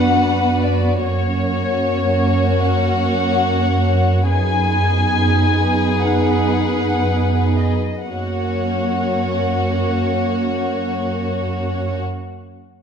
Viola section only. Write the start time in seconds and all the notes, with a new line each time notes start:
Already playing: B3 D4
1.01 A#3 C#4
4.28 B3 D#4
8.08 A#3 C#4